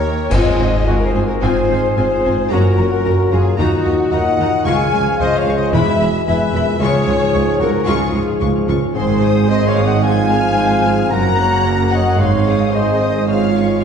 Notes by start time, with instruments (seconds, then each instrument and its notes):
Already playing: harp D#3 G3, trumpet A#4, violin section C#5, flute C#5, clarinet C#5
0.02 violin section G4
0.29 double bass section G#1, cello section G#2, trombone section G#2 G#3, harp G#2, french horn section C4 F4, viola section C4 F4, trumpet C5, flute D#5, clarinet D#5, violin section G#5, concert bass drum, crash
0.34 violin section D#5
0.46 harp C4
0.58 double bass section G#1, cello section G#2, viola section C4 F4, harp G#4, violin section G#5
0.74 harp F5
0.86 double bass section G#1, cello section G#2, viola section C4 F4, trumpet F#4, flute A#4, clarinet A#4, violin section A#4 G#5, harp G#5
1.02 flute C5, harp F5
1.06 trumpet G#4, clarinet C5, violin section C5
1.14 double bass section G#1, cello section G#2, viola section C4 F4, harp C5, violin section G#5
1.24 trumpet F#4, flute A#4, clarinet A#4, violin section A#4
1.29 harp G#4
1.41 double bass section G#1, trombone section G#2 G#3, cello section G#2, harp G#2, viola section C4 F4, french horn section C4 F4, trumpet G#4, violin section C5 G#5, flute C5, clarinet C5
1.56 harp C4
1.70 double bass section G#1, cello section G#2, viola section C4 F4, harp G#4, violin section G#5
1.84 harp F5
1.97 double bass section G#1, trombone section G#2 G#3, cello section G#2, french horn section C4 F4, viola section C4 F4, trumpet G#4, flute C5, violin section C5 G#5, clarinet C5, harp G#5
2.11 harp F5
2.24 double bass section G#1, cello section G#2, viola section C4 F4, harp C5, violin section G#5
2.38 harp G#4
2.50 double bass section F#1, cello section F#2, harp F#2, trombone section A#2 F#3, french horn section C#4 F#4, viola section C#4 F#4, trumpet F#4, violin section A#4 A#5, flute A#4, clarinet A#4
2.64 harp C#4
2.77 double bass section F#1, cello section F#2, viola section C#4 F#4, harp A#4, violin section A#5
2.92 harp F#5
3.04 double bass section F#1, cello section F#2, viola section C#4 F#4, harp A#5, violin section A#5
3.18 harp F#5
3.31 double bass section F#1, cello section F#2, viola section C#4 F#4, trumpet F4, flute G#4, clarinet G#4, violin section G#4 A#5, harp C#5
3.45 harp A#4
3.57 double bass section D#2, cello section D#2, trombone section A#2 F#3, harp D#3, french horn section A#3 D#4, trumpet D#4, viola section D#4 F#4, clarinet F#4, violin section F#4 A#5, flute F#4
3.73 harp D#4
3.85 cello section D#2, double bass section D#2, viola section D#4 F#4, harp A#4, violin section A#5
3.99 harp F#5
4.11 double bass section D#2, cello section D#2, trombone section A#2 F#3, french horn section A#3 D#4, viola section D#4 F#4, trumpet D#5, violin section F#5 A#5, clarinet F#5, flute F#5, harp A#5
4.26 harp F#5
4.39 cello section D#2, double bass section D#2, viola section D#4 F#4, harp D#5, violin section A#5
4.53 harp A#4
4.65 cello section C#2, double bass section C#2, trombone section C#3 F3, harp C#3, viola section G#3 F4, french horn section G#3 G#4, trumpet F5, violin section G#5 C#6, clarinet G#5, flute G#5
4.80 harp G#3
4.93 cello section C#2, double bass section C#2, viola section G#3 F4, harp C#5, violin section C#6
5.07 harp F5
5.19 double bass section C#2, cello section C#2, viola section G#3 F4, trumpet C5, violin section D#5 C#6, clarinet D#5, flute D#5, harp C#6
5.33 harp F5
5.37 trumpet C#5, violin section F5, clarinet F5, flute F5
5.46 cello section C#2, double bass section C#2, viola section G#3 F4, harp G#4, violin section C#6
5.55 trumpet C5, violin section D#5, clarinet D#5, flute D#5
5.60 harp C#5
5.73 double bass section E1, cello section E2, trombone section B2 E3, harp E3, viola section G#3 E4, french horn section G#3 G#4, trumpet B4, violin section E5 B5, flute E5, clarinet E5
5.87 harp E4
6.00 double bass section E1, cello section E2, viola section G#3 E4, harp G#4, violin section B5
6.14 harp B5
6.27 double bass section E1, cello section E2, trombone section B2 E3, french horn section G#3 G#4, viola section G#3 E4, trumpet B4, flute E5, clarinet E5, violin section E5 B5, harp G#5
6.40 harp B5
6.54 double bass section E1, cello section E2, trombone section A#2, viola section G#3 E4, harp E5, violin section B5
6.67 harp G#4
6.79 cello section C#2, double bass section C#2, trombone section G#2 F3, harp C#3, french horn section G#3 G#4, viola section G#3 F4, trumpet G#4, flute C#5, violin section C#5 C#6, clarinet C#5
6.94 harp G#3
7.07 cello section C#2, double bass section C#2, viola section G#3 F4, harp C#5, violin section C#6
7.19 harp F5
7.34 cello section C#2, double bass section C#2, viola section G#3 F4, harp C#6, violin section C#6
7.46 harp F5
7.60 cello section C#2, double bass section C#2, viola section G#3 F4, trumpet F#4, harp G#4, violin section A#4 C#6, flute A#4, clarinet A#4
7.72 harp C#5
7.87 cello section C#2, double bass section C#2, trombone section G#2 F3, viola section G#3 F4, french horn section G#3 G#4, harp C#4, trumpet F4, flute G#4, clarinet G#4, violin section G#4 C#6
8.00 harp G#3
8.13 cello section C#2, double bass section C#2, viola section G#3 F4, harp C#5, violin section C#6
8.28 harp F5
8.40 cello section C#2, double bass section C#2, viola section G#3 F4, violin section C#6, harp C#6
8.55 harp F5
8.67 cello section C#2, double bass section C#2, viola section G#3 F4, harp G#4, violin section C#6
8.82 harp C#5
8.94 double bass section G#1, cello section G#2, trombone section G#2 D#3, harp G#2, french horn section G#3 G#4, viola section C4 G#4, trumpet G#4, violin section C5 C6, clarinet C5, flute C5
9.09 harp G#3
9.22 viola section G#3 C5, harp D#5, violin section D#6
9.36 harp G#4
9.49 trombone section G#2 D#3, french horn section G#3 G#4, viola section C4 G#4, trumpet C5, flute D#5, violin section D#5 C6, clarinet D#5, harp D#6
9.63 harp D#5
9.67 trumpet C#5, flute F5, violin section F5, clarinet F5
9.76 viola section G#3 C5, french horn section A#3, harp G#4, violin section D#6
9.85 trumpet D#5, clarinet F#5, flute F#5, violin section F#5
9.90 harp D#5
10.02 harp G#2, trombone section G#2 F3, viola section F3 C5, french horn section C4 G#4, trumpet F5, violin section G#5 G#6, clarinet G#5, flute G#5
10.17 harp C4
10.30 viola section G#3 G#4, harp C5, violin section F6
10.44 harp F5
10.57 viola section F3 C5, harp C6, violin section G#6
10.85 viola section G#3 G#4, harp C5, violin section F6
10.99 harp F4
11.11 double bass section F#1, cello section F#2, harp F#2, trombone section C#3 A#3, viola section A#3 A#4, french horn section C#4 F#4, trumpet F#5, violin section A#5 A#6, clarinet A#5, flute A#5
11.26 harp C#4
11.39 viola section C#4 C#5, violin section F#6
11.53 harp F#5
11.65 viola section A#3 A#4, harp A#5, violin section A#6
11.79 harp F#5
11.91 viola section C#4 C#5, harp C#5, trumpet D#5, violin section F#5 F#6, clarinet F#5, flute F#5
12.08 harp A#4
12.18 double bass section G#1, trombone section G#2 G#3, cello section G#2, harp G#2, french horn section C3 G#4, viola section D#4 G#4, trumpet C#5, violin section F5 C6, clarinet F5, flute F5
12.34 harp C4
12.46 viola section C4 C5, harp G#4, violin section D#6
12.61 harp D#5
12.72 trombone section G#2 G#3, french horn section C4 G#4, viola section D#4 G#4, trumpet C5, violin section D#5 C6, flute D#5, clarinet D#5, harp G#5
12.87 harp D#5
13.00 viola section C4 C5, harp C5, violin section D#6
13.15 harp G#4
13.27 harp G#2, trombone section G#2 G#3, french horn section C#4 F4, viola section F4 G#4, trumpet C#5, violin section F5 F6, clarinet F5, flute F5
13.42 harp C#4
13.55 viola section C#4 F4, harp F4, violin section C#6
13.70 harp C#5